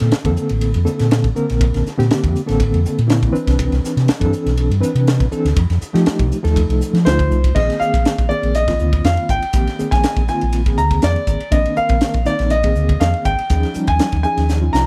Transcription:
Already playing: D3 A#3 C4 A4
0.00 A#2, snare, ride
0.11 muted fingered electric bass stroke, snare, ride
0.24 F2 D3 A#3 C4 A4, kick, ride
0.37 hi-hat pedal
0.49 A1, ride
0.61 ride
0.74 F2, ride
0.85 D3 A#3 C4 A4, muted fingered electric bass stroke, hi-hat pedal
0.99 A#2, snare, ride
1.11 snare, ride
1.24 A1, kick, ride
1.35 D3 A#3 C4 A#4, muted fingered electric bass stroke, hi-hat pedal
1.50 A#1, snare, ride
1.61 kick, ride
1.74 A#1, snare, ride
1.86 muted fingered electric bass stroke, snare, hi-hat pedal
1.98 A#2 D3 A#3 C4 G4, snare, ride
2.11 muted fingered electric bass stroke, snare, ride
2.24 F2, kick, ride
2.36 hi-hat pedal
2.46 A1 D3 A#3 C4 A4, snare, ride
2.60 kick, ride
2.74 F2, ride
2.85 muted fingered electric bass stroke, hi-hat pedal
2.99 A#2, ride
3.07 D3 A#3 C4 E4, snare, ride
3.23 B1, kick, ride
3.32 E3 C4 D4 B4, muted fingered electric bass stroke, hi-hat pedal
3.47 C2, kick, snare, ride
3.59 kick, ride
3.72 C2, snare, ride
3.83 muted fingered electric bass stroke, snare, hi-hat pedal
3.97 C3, snare, ride
4.08 muted fingered electric bass stroke, snare, ride
4.20 G2 E3 C4 D4 A4, kick, ride
4.33 hi-hat pedal
4.46 B1, snare, ride
4.57 ride
4.70 G2, ride
4.80 E3 C4 D4 B4, muted fingered electric bass stroke, hi-hat pedal
4.95 C3, ride
5.07 snare, ride
5.20 B1, kick, ride
5.31 E3 C4 D4 A4, muted fingered electric bass stroke, hi-hat pedal
5.45 D2, snare, ride
5.56 F2, kick, ride
5.70 F2, snare, ride
5.81 muted fingered electric bass stroke, hi-hat pedal
5.93 F3 A3 D#4 G4, snare, ride
6.06 muted fingered electric bass stroke, snare, ride
6.19 C2, kick, ride
6.32 hi-hat pedal
6.43 D#2 F3 A3 D#4 A4, snare, ride
6.56 kick, ride
6.69 C2, ride
6.81 muted fingered electric bass stroke, hi-hat pedal
6.93 F3, snare, ride
7.04 D2 F3 A3 D#4 F4 C5, snare, ride
7.19 kick, ride
7.31 C2, hi-hat pedal
7.44 kick, ride
7.55 A#1 D#3 A#3 C4 G#4 D#5, kick, crash
7.70 snare, ride
7.80 D#3 A#3 C4 G#4 F5, muted fingered electric bass stroke, hi-hat pedal
7.94 A#1, kick, ride
8.05 snare, hi-hat pedal, ride
8.19 A#1, kick, ride
8.29 D#3 A#3 C4 G#4 D5, hi-hat pedal
8.43 A#1, ride
8.54 D#5, hi-hat pedal, ride
8.67 D#3 A#3 C4 F4, kick, snare, ride
8.79 D2, hi-hat pedal
8.93 kick, ride
9.04 F2 F5, snare, hi-hat pedal, ride
9.17 ride
9.29 G#1 G5, kick, hi-hat pedal
9.42 muted fingered electric bass stroke, ride
9.53 A#1 D#3 A#3 C4 G4, kick, hi-hat pedal, ride
9.67 snare, ride
9.79 D#3 A#3 C4 G#4, muted fingered electric bass stroke, hi-hat pedal
9.91 A#1 G#5, kick, snare, ride
10.03 snare, hi-hat pedal, ride
10.16 A#1, kick, ride
10.28 D#3 A#3 C4 F4 G#5, snare, hi-hat pedal
10.41 A#1, ride
10.52 hi-hat pedal, ride
10.66 D#3 A#3 C4 G#4, kick, ride
10.77 D2 A#5, hi-hat pedal
10.91 kick, ride
11.02 F2 D5, snare, hi-hat pedal, ride
11.16 ride
11.27 G#1, kick, hi-hat pedal
11.40 muted fingered electric bass stroke, ride
11.51 A#1 D#3 A#3 C4 D4 D#5, kick, hi-hat pedal, ride
11.66 ride
11.76 D#3 A#3 C4 A#4 F5, muted fingered electric bass stroke, hi-hat pedal
11.89 A#1, kick, ride
12.01 snare, hi-hat pedal, ride
12.14 A#1, kick, ride
12.25 D#3 A#3 C4 D#4 D5, snare, hi-hat pedal
12.39 A#1, snare, ride
12.50 D#5, hi-hat pedal, ride
12.63 D#3 A#3 C4 G#4, kick, ride
12.75 D2, hi-hat pedal
12.89 kick, ride
13.00 F2 F5, snare, hi-hat pedal, ride
13.14 ride
13.25 G#1 G5, kick, hi-hat pedal
13.39 muted fingered electric bass stroke, ride
13.50 D#2 F3 C#4 D#4 G#4, kick, hi-hat pedal, ride
13.63 snare, ride
13.73 F3 G3 C#4 D#4, muted fingered electric bass stroke, hi-hat pedal
13.87 D#2 G#5, kick, ride
13.99 snare, hi-hat pedal, ride
14.12 D#2, kick, ride
14.23 F3 C#4 D#4 G#4 G#5, hi-hat pedal
14.37 D#2, snare, ride
14.49 snare, hi-hat pedal
14.61 F3 C#4 D#4 F4
14.73 C2 A#5, snare, hi-hat pedal

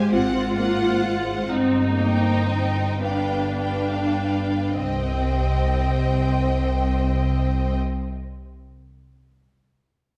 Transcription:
Already playing: G4 G#5
0.11 G#1 C4 F4 C5 F#5
0.57 A#3 C5 F#5
1.03 G#3
1.48 G1 C4 D#4
1.96 A#3 C5 D#5 G5
2.46 C4
3.00 G1 B3 D4 B4 F5 G5
3.57 B4 F5 G5
4.77 C2 C4 C5 D#5 G5

